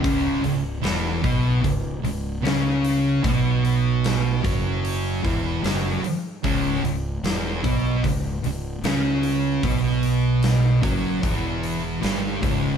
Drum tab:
HH |oooooooo|oooooooo|oooooooo|oooooooo|
SD |--o---o-|--o---o-|--o---o-|--o---o-|
BD |o--oo---|o--o-o--|o--oo---|o--oo--o|